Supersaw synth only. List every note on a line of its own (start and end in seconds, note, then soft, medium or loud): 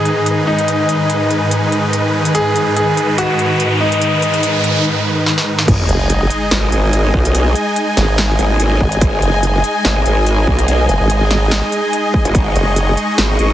0.00 5.64 G#2 medium
0.00 5.64 D#3 medium
0.00 5.64 D#4 medium
0.00 5.66 B4 medium
5.68 13.53 G#3 medium
5.68 13.53 D#4 medium
5.68 13.53 D#5 medium
5.68 12.33 G#5 medium
12.35 13.53 C#6 medium